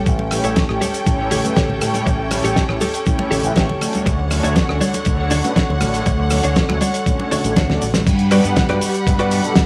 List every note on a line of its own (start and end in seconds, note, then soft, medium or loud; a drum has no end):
0.00 4.02 C#4 medium
0.00 0.11 G4 medium
0.00 0.12 A4 medium
0.00 4.02 A4 medium
0.00 0.12 C#5 medium
0.00 4.02 G5 medium
0.06 0.39 A1 medium
0.06 kick loud
0.06 closed hi-hat medium
0.06 shaker soft
0.19 muted clean electric guitar stroke soft
0.19 muted conga soft
0.31 0.66 A3 medium
0.31 0.66 C#4 medium
0.31 0.66 E4 medium
0.31 0.66 G4 medium
0.31 0.66 C#5 loud
0.31 cross-stick medium
0.31 open hi-hat loud
0.31 shaker medium
0.44 0.53 A1 loud
0.44 0.63 G4 medium
0.44 0.63 A4 medium
0.44 0.63 C#5 medium
0.44 closed hi-hat medium
0.44 shaker medium
0.56 kick loud
0.56 snare loud
0.56 closed hi-hat medium
0.56 muted conga medium
0.56 shaker soft
0.69 0.78 A1 medium
0.69 0.78 A3 medium
0.69 0.78 C#4 medium
0.69 0.78 E4 medium
0.69 0.78 G4 medium
0.69 0.78 C#5 loud
0.69 cross-stick medium
0.81 1.06 G4 medium
0.81 1.07 A4 medium
0.81 1.07 C#5 medium
0.81 open hi-hat medium
0.81 high conga medium
0.81 shaker medium
0.94 closed hi-hat medium
0.94 shaker medium
1.06 1.39 A1 medium
1.06 1.41 A3 medium
1.06 1.41 C#4 medium
1.06 1.41 E4 medium
1.06 1.41 G4 medium
1.06 1.41 C#5 loud
1.06 kick loud
1.06 closed hi-hat medium
1.06 muted conga soft
1.06 shaker medium
1.31 1.44 G4 loud
1.31 1.44 A4 medium
1.31 1.44 C#5 loud
1.31 open hi-hat loud
1.31 low conga medium
1.31 shaker medium
1.44 1.53 A3 loud
1.44 1.53 C#4 medium
1.44 1.53 E4 medium
1.44 1.53 G4 medium
1.44 1.54 B4 loud
1.44 closed hi-hat medium
1.44 muted conga medium
1.44 shaker medium
1.56 1.81 G4 medium
1.56 1.82 A4 medium
1.56 1.82 C#5 medium
1.56 kick loud
1.56 snare loud
1.56 closed hi-hat medium
1.56 shaker soft
1.69 1.78 A1 loud
1.69 low conga medium
1.81 2.00 A2 medium
1.81 2.28 A3 medium
1.81 2.28 C#4 medium
1.81 2.29 E4 medium
1.81 2.29 G4 medium
1.81 2.29 C#5 medium
1.81 cross-stick medium
1.81 open hi-hat medium
1.81 shaker medium
1.94 closed hi-hat medium
1.94 muted conga soft
1.94 shaker medium
2.06 2.39 A1 loud
2.06 muted clean electric guitar stroke loud
2.06 kick loud
2.06 closed hi-hat medium
2.06 shaker soft
2.19 muted clean electric guitar stroke soft
2.31 2.66 A3 medium
2.31 2.66 C#4 medium
2.31 2.66 E4 medium
2.31 2.66 G4 medium
2.31 2.66 C#5 loud
2.31 cross-stick medium
2.31 open hi-hat loud
2.31 muted conga medium
2.31 shaker medium
2.44 2.53 A1 loud
2.44 2.63 G4 medium
2.44 2.63 A4 medium
2.44 2.63 C#5 medium
2.44 closed hi-hat medium
2.44 shaker medium
2.56 kick loud
2.56 snare loud
2.56 closed hi-hat medium
2.56 shaker medium
2.69 2.78 A1 medium
2.69 2.78 A3 medium
2.69 2.78 C#4 medium
2.69 2.78 E4 medium
2.69 2.78 G4 medium
2.69 2.78 C#5 loud
2.69 cross-stick medium
2.81 3.06 G4 medium
2.81 3.06 A4 medium
2.81 3.07 C#5 medium
2.81 open hi-hat loud
2.81 muted conga medium
2.81 high conga medium
2.81 shaker medium
2.94 closed hi-hat medium
2.94 shaker medium
3.06 3.41 A3 medium
3.06 3.41 C#4 medium
3.06 3.41 E4 medium
3.06 3.41 G4 medium
3.06 3.41 C#5 loud
3.06 kick loud
3.06 closed hi-hat medium
3.06 shaker medium
3.19 muted conga medium
3.31 3.41 A1 loud
3.31 3.44 G4 loud
3.31 3.44 A4 loud
3.31 3.44 C#5 loud
3.31 open hi-hat loud
3.31 low conga medium
3.31 shaker medium
3.43 3.53 A1 loud
3.43 3.53 A3 loud
3.43 3.53 C#4 medium
3.43 3.53 E4 medium
3.43 3.53 G4 medium
3.43 3.53 B4 loud
3.43 closed hi-hat medium
3.43 shaker medium
3.56 3.66 A1 medium
3.56 3.81 G4 medium
3.56 3.81 A4 medium
3.56 3.82 C#5 medium
3.56 kick loud
3.56 snare loud
3.56 closed hi-hat medium
3.56 shaker medium
3.69 muted conga soft
3.69 low conga medium
3.80 4.28 A3 medium
3.80 4.28 C#4 medium
3.80 4.28 D4 medium
3.80 4.28 F#4 medium
3.80 4.28 C#5 medium
3.80 cross-stick medium
3.80 open hi-hat loud
3.80 shaker loud
3.93 closed hi-hat medium
3.93 high conga medium
3.93 shaker medium
4.06 4.39 D2 medium
4.06 8.03 D3 medium
4.06 8.03 C#5 medium
4.06 8.03 F#5 medium
4.06 muted clean electric guitar stroke loud
4.06 kick loud
4.06 closed hi-hat medium
4.06 muted conga medium
4.06 shaker medium
4.18 muted clean electric guitar stroke soft
4.31 4.66 A3 medium
4.31 4.66 C#4 medium
4.31 4.66 D4 medium
4.31 4.66 F#4 medium
4.31 4.66 C#5 medium
4.31 cross-stick medium
4.31 open hi-hat loud
4.31 shaker medium
4.43 4.53 D2 loud
4.43 4.62 D4 medium
4.43 4.63 F#4 medium
4.43 4.63 C#5 medium
4.43 closed hi-hat medium
4.43 shaker medium
4.56 kick loud
4.56 snare loud
4.56 closed hi-hat medium
4.56 muted conga medium
4.56 shaker medium
4.68 4.78 D2 medium
4.68 4.78 A3 loud
4.68 4.78 C#4 medium
4.68 4.78 D4 medium
4.68 4.78 F#4 medium
4.68 4.78 C#5 loud
4.68 cross-stick medium
4.81 5.06 D4 medium
4.81 5.06 F#4 medium
4.81 5.06 C#5 loud
4.81 open hi-hat medium
4.81 high conga medium
4.81 shaker medium
4.94 closed hi-hat medium
4.94 muted conga medium
4.94 shaker medium
5.05 5.39 D2 medium
5.05 5.41 A3 medium
5.05 5.41 D4 medium
5.05 5.41 F#4 medium
5.05 5.41 C#5 loud
5.05 kick loud
5.05 closed hi-hat medium
5.05 shaker medium
5.31 5.44 D4 loud
5.31 5.44 F#4 loud
5.31 5.44 C#5 loud
5.31 open hi-hat loud
5.31 low conga medium
5.31 shaker medium
5.44 5.53 A3 loud
5.44 5.53 C#4 medium
5.44 5.53 D4 medium
5.44 5.53 F#4 medium
5.44 5.53 B4 loud
5.44 closed hi-hat medium
5.44 muted conga medium
5.44 shaker medium
5.56 5.81 D4 medium
5.56 5.81 F#4 medium
5.56 5.82 C#5 medium
5.56 kick loud
5.56 snare loud
5.56 closed hi-hat medium
5.56 shaker medium
5.69 5.78 D2 loud
5.69 low conga medium
5.80 6.00 A1 medium
5.80 6.28 A3 medium
5.80 6.28 D4 medium
5.80 6.28 F#4 medium
5.80 6.28 C#5 medium
5.80 cross-stick medium
5.80 open hi-hat loud
5.80 muted conga medium
5.80 shaker medium
5.94 closed hi-hat medium
5.94 shaker medium
6.06 6.39 D2 loud
6.06 muted clean electric guitar stroke loud
6.06 kick loud
6.06 closed hi-hat medium
6.06 shaker soft
6.19 muted clean electric guitar stroke soft
6.30 6.66 A3 medium
6.30 6.66 C#4 medium
6.30 6.66 D4 medium
6.30 6.66 F#4 medium
6.30 6.66 C#5 loud
6.30 cross-stick medium
6.30 open hi-hat loud
6.30 muted conga soft
6.30 shaker medium
6.43 6.53 D2 loud
6.43 6.63 D4 medium
6.43 6.63 F#4 medium
6.43 6.63 C#5 medium
6.43 closed hi-hat medium
6.43 shaker medium
6.56 kick loud
6.56 snare loud
6.56 closed hi-hat medium
6.56 shaker soft
6.68 6.79 D2 medium
6.68 6.78 A3 medium
6.68 6.78 C#4 medium
6.68 6.78 D4 medium
6.68 6.78 F#4 medium
6.68 6.78 C#5 loud
6.68 cross-stick medium
6.68 muted conga medium
6.81 7.06 D4 medium
6.81 7.06 F#4 medium
6.81 7.07 C#5 loud
6.81 open hi-hat medium
6.81 high conga medium
6.81 shaker medium
6.94 closed hi-hat medium
6.94 shaker medium
7.05 7.29 A3 medium
7.05 7.29 C#4 medium
7.05 7.29 D4 medium
7.05 7.29 F#4 medium
7.05 7.29 C#5 loud
7.05 kick loud
7.05 closed hi-hat medium
7.05 shaker medium
7.20 muted conga medium
7.31 7.40 A3 medium
7.31 7.40 C#4 medium
7.31 7.44 D4 loud
7.31 7.41 D4 medium
7.31 7.41 F#4 medium
7.31 7.44 F#4 loud
7.31 7.41 C#5 loud
7.31 7.45 C#5 loud
7.31 open hi-hat loud
7.31 low conga medium
7.31 shaker medium
7.44 7.54 A1 medium
7.44 7.53 A3 medium
7.44 7.53 C#4 medium
7.44 7.53 D4 medium
7.44 7.53 F#4 medium
7.44 7.53 C#5 loud
7.44 closed hi-hat medium
7.44 shaker medium
7.56 7.75 D2 loud
7.56 7.81 D4 medium
7.56 7.82 F#4 medium
7.56 7.82 C#5 medium
7.56 kick loud
7.56 snare loud
7.56 closed hi-hat medium
7.56 muted conga medium
7.56 shaker medium
7.69 7.83 A3 medium
7.69 7.84 C#4 medium
7.69 7.84 D4 medium
7.69 7.84 F#4 medium
7.69 7.84 D5 loud
7.69 snare medium
7.69 low conga medium
7.82 8.01 A1 medium
7.82 open hi-hat medium
7.82 shaker medium
7.94 snare loud
7.94 closed hi-hat medium
7.94 high conga medium
7.94 shaker medium
8.06 8.39 G2 loud
8.06 9.66 G3 medium
8.06 9.66 F#5 medium
8.06 9.66 B5 medium
8.06 kick loud
8.06 closed hi-hat loud
8.06 crash loud
8.06 shaker medium
8.19 closed hi-hat medium
8.31 8.66 G3 medium
8.31 8.66 B3 medium
8.31 8.66 D4 medium
8.31 8.44 F#4 loud
8.31 8.44 G4 loud
8.31 8.44 B4 loud
8.31 8.67 B4 loud
8.31 8.45 D5 loud
8.31 8.67 F#5 medium
8.31 cross-stick medium
8.31 open hi-hat loud
8.31 shaker medium
8.44 8.54 G2 loud
8.44 closed hi-hat medium
8.44 shaker medium
8.56 muted clean electric guitar stroke soft
8.56 kick loud
8.56 snare loud
8.56 closed hi-hat loud
8.56 shaker soft
8.69 8.79 G2 medium
8.69 8.78 G3 medium
8.69 8.78 B3 medium
8.69 8.78 D4 medium
8.69 8.78 F#4 medium
8.69 8.94 F#4 medium
8.69 8.94 G4 medium
8.69 8.94 B4 medium
8.69 8.78 B4 loud
8.69 8.95 D5 loud
8.69 cross-stick medium
8.69 closed hi-hat medium
8.81 open hi-hat loud
8.81 shaker medium
8.94 closed hi-hat medium
8.94 shaker medium
9.06 9.39 G2 medium
9.06 9.41 G3 medium
9.06 9.41 B3 medium
9.06 9.41 D4 medium
9.06 9.42 B4 loud
9.06 9.41 F#5 medium
9.06 kick loud
9.06 closed hi-hat loud
9.06 shaker soft
9.19 9.44 F#4 loud
9.19 9.44 G4 medium
9.19 9.44 B4 loud
9.19 9.45 D5 loud
9.19 closed hi-hat medium
9.31 open hi-hat loud
9.31 shaker medium
9.43 9.53 G3 loud
9.43 9.53 B3 medium
9.43 9.53 D4 medium
9.43 9.53 F#4 medium
9.43 9.53 A4 loud
9.43 closed hi-hat medium
9.43 shaker medium
9.55 kick loud
9.55 snare loud
9.55 closed hi-hat loud
9.55 shaker medium